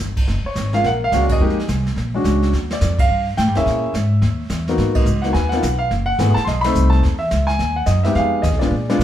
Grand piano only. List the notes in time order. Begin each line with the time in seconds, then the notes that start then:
0.46 C#5
0.73 G#3 A#3 C#4 F4 F5
0.86 A#4 F#5
1.04 F5
1.13 G#3 A#3 C#4 F#4
1.22 D5
1.32 G#4 D#5
1.41 G#3 A#3 D#4 G4
2.14 G#3 C#4 D4 F#4
2.73 D5
3.00 F5
3.37 G5
3.56 A#3 C#4 E4 G#4 C#5 E5
4.69 A#3 B3 D#4 F#4
4.95 D#5
5.22 A#3 B3 D#4 F#4 F#5
5.33 B4 G#5
5.49 F#5
5.53 A#3 B3 D#4 F4
5.79 F5
6.06 F#5
6.19 A3 B3 E4 G#4
6.34 A5
6.45 D#5 C6
6.61 A3 B5
6.66 C4 D#4 A4
6.90 A5
7.19 E5
7.47 G#5
7.76 F#5
7.86 D#5
8.03 G#3 B3 D#4 G4 E5
8.15 G#4 F5
8.42 D#5
8.59 G#3 B3 D4 F4 G#4 D5
8.90 G#3 B3 D4 F4